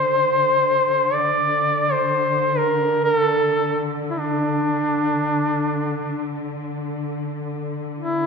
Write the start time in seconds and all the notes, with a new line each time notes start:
Already playing: D3 C5
1.14 D5
1.92 C5
2.57 A#4
3.04 A#4
3.16 A4
4.10 E4
4.19 D4
7.98 E4